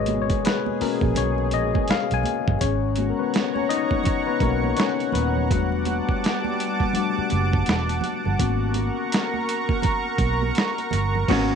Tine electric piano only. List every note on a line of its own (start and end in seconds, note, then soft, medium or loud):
0.00 0.81 A#4 medium
0.00 0.46 B4 medium
0.00 0.22 C#5 medium
0.00 0.21 D#5 medium
0.22 0.46 C#5 medium
0.46 0.82 B4 medium
0.80 1.85 A#3 medium
0.80 1.85 B3 soft
0.80 1.85 C#4 medium
0.80 1.85 F#4 medium
0.80 1.18 A#4 medium
1.18 1.51 C#5 loud
1.54 1.87 D#5 medium
1.90 2.14 F5 loud
2.14 2.58 G#5 loud
2.61 2.97 C#4 medium
2.61 3.12 C#5 medium
2.97 5.46 G#3 soft
2.97 3.19 B3 soft
2.97 3.56 C#4 soft
2.97 4.41 F#4 soft
3.10 3.19 A#4 medium
3.19 3.53 B3 medium
3.19 3.53 B4 medium
3.55 3.63 C#4 medium
3.55 3.61 C#5 medium
3.69 4.24 D#4 medium
3.69 4.24 D#5 loud
4.27 4.40 B3 medium
4.27 4.40 B4 medium
4.41 4.76 A#3 medium
4.41 4.74 B3 soft
4.41 4.74 C#4 soft
4.41 4.74 F#4 medium
4.41 4.79 A#4 medium
4.78 4.95 C#4 medium
4.78 4.94 C#5 medium
5.13 8.00 B3 medium
5.13 7.99 B4 medium
5.50 6.95 G3 medium
5.50 6.95 A3 soft
5.50 6.95 D4 soft
5.50 6.96 F#4 medium
6.96 7.28 G3 soft
6.96 7.28 A3 soft
6.96 7.28 D4 soft
6.96 7.28 F#4 medium
8.39 8.90 A#3 medium
8.39 8.90 B3 medium
8.39 8.91 C#4 soft
8.39 8.91 F#4 medium
11.29 11.54 A#3 medium
11.29 11.54 B3 medium
11.29 11.55 C#4 medium
11.29 11.55 F#4 medium